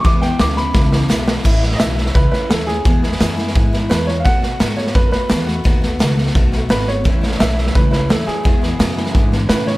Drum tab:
CC |----------------|x---------------|----------------|----------------|
HH |----p-------p---|----p-------p---|----p-------p---|----p-------p---|
SD |o-o-o-o-o-o-o-o-|o-ooo-ooo-o-o-o-|o-ooo-ooo-o-o-o-|o-o-o-ooo-o-o-o-|
BD |o-------o-------|o-------o-------|o-------o-------|o-------o-------|

CC |----------------|----------------|----------------|
HH |----p-------p---|----p-------p---|----p-------p---|
SD |o-o-o-ooo-o-o-o-|o-ooo-ooo-o-o-o-|o-o-o-ooo-o-o-o-|
BD |o-------o-------|o-------o-------|o-------o-------|